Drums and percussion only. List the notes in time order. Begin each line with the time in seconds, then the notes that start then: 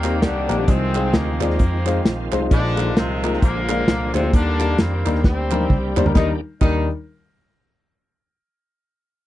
0.04 snare, clap, closed hi-hat
0.22 snare, closed hi-hat
0.49 clap, closed hi-hat
0.68 kick, closed hi-hat
0.95 clap, closed hi-hat
1.13 snare, closed hi-hat
1.41 clap, closed hi-hat
1.50 snare
1.59 kick, closed hi-hat
1.86 clap, closed hi-hat
2.05 snare, closed hi-hat
2.32 clap, closed hi-hat
2.51 kick, closed hi-hat
2.78 clap, closed hi-hat
2.97 snare, closed hi-hat
3.24 clap, closed hi-hat
3.33 snare
3.42 kick, closed hi-hat
3.69 snare, clap, closed hi-hat
3.88 snare, closed hi-hat
4.15 clap, closed hi-hat
4.33 kick, closed hi-hat
4.60 clap, closed hi-hat
4.78 snare, closed hi-hat
5.05 clap, closed hi-hat
5.15 snare
5.24 kick, snare
5.51 clap, high tom
5.61 high tom
5.70 kick, mid tom
5.97 clap, floor tom
6.06 floor tom
6.15 kick, snare, clap
6.61 kick, clap, crash